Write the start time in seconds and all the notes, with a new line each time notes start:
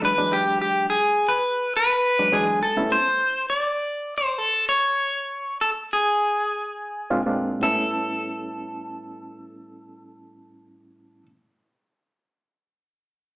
0.02 E2 F#3 G#3 D4 B4
0.18 E2 F#3 G#3 D4
0.33 G4
0.62 G4
0.90 G#4
1.28 B4
1.77 B4
2.19 E2 F#3 G#3 D4
2.32 E2 F#3 G#3 D4 G#4
2.63 A4
2.77 A2 G3 B3 C#4 E4
2.92 C5
3.50 D5
4.18 C5
4.38 A4
4.69 C#5
5.61 A4
5.93 G#4
7.10 A#2 G#3 C4 D4 F4
7.26 A#2 G#3 C4 D4 F4
7.60 A2 G3 B3 C#4 E4 A4